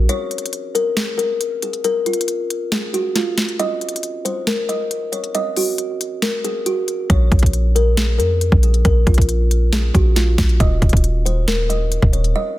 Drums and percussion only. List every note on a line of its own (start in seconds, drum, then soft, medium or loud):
0.09 closed hi-hat medium
0.31 closed hi-hat soft
0.38 closed hi-hat medium
0.46 closed hi-hat medium
0.53 closed hi-hat medium
0.75 closed hi-hat medium
0.97 snare loud
0.97 closed hi-hat medium
1.19 closed hi-hat medium
1.41 closed hi-hat medium
1.62 closed hi-hat medium
1.73 closed hi-hat soft
1.84 closed hi-hat medium
2.06 closed hi-hat soft
2.06 open hi-hat medium
2.13 closed hi-hat medium
2.21 closed hi-hat medium
2.28 closed hi-hat medium
2.50 closed hi-hat medium
2.72 snare loud
2.72 closed hi-hat medium
2.94 closed hi-hat medium
3.16 snare medium
3.16 closed hi-hat medium
3.38 snare loud
3.38 closed hi-hat medium
3.49 closed hi-hat soft
3.59 closed hi-hat medium
3.81 closed hi-hat soft
3.89 closed hi-hat medium
3.96 closed hi-hat medium
4.03 closed hi-hat medium
4.26 closed hi-hat medium
4.47 snare loud
4.47 closed hi-hat medium
4.69 closed hi-hat medium
4.91 closed hi-hat medium
5.13 closed hi-hat medium
5.24 closed hi-hat soft
5.35 closed hi-hat medium
5.57 open hi-hat medium
5.78 closed hi-hat medium
6.01 closed hi-hat medium
6.22 snare loud
6.22 closed hi-hat medium
6.45 closed hi-hat medium
6.66 closed hi-hat medium
6.88 closed hi-hat medium
7.10 kick loud
7.10 closed hi-hat medium
7.32 kick loud
7.32 closed hi-hat soft
7.39 kick loud
7.39 closed hi-hat medium
7.46 closed hi-hat medium
7.53 closed hi-hat medium
7.76 closed hi-hat medium
7.97 snare loud
7.97 closed hi-hat medium
8.20 closed hi-hat medium
8.41 closed hi-hat medium
8.52 kick medium
8.63 closed hi-hat medium
8.74 closed hi-hat soft
8.85 kick loud
8.85 closed hi-hat medium
9.07 kick loud
9.07 closed hi-hat soft
9.07 open hi-hat medium
9.14 kick loud
9.14 closed hi-hat medium
9.22 closed hi-hat medium
9.29 closed hi-hat medium
9.51 closed hi-hat medium
9.73 snare loud
9.73 closed hi-hat medium
9.95 kick loud
9.95 closed hi-hat medium
10.16 snare medium
10.16 closed hi-hat medium
10.38 kick loud
10.38 snare loud
10.38 closed hi-hat medium
10.49 closed hi-hat soft
10.60 kick loud
10.60 closed hi-hat medium
10.82 kick loud
10.82 closed hi-hat soft
10.89 kick loud
10.89 closed hi-hat medium
10.97 closed hi-hat medium
11.04 closed hi-hat medium
11.26 closed hi-hat medium
11.48 snare loud
11.48 closed hi-hat medium
11.70 closed hi-hat medium
11.92 closed hi-hat medium
12.02 kick medium
12.13 closed hi-hat medium
12.24 closed hi-hat soft